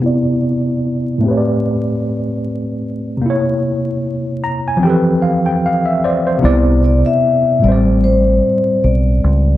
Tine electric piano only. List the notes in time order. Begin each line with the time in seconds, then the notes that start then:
0.00 C3 B3 E4
0.06 D5
1.18 A2 A3
1.23 C4 G4
1.28 B4 C#5
1.37 D5
3.17 C3
3.22 A#3
3.26 E4
3.30 C#5
4.44 A#5
4.68 G#5
4.77 F3 C4
4.82 E3 G4 G5
4.87 A4 B4
5.22 F5
5.46 G5
5.66 F5
5.86 E5
6.04 C5 D5
6.27 C5
6.38 C3 B3
6.43 E4 D5
7.59 A2 G3
7.65 C4 C5
7.72 D5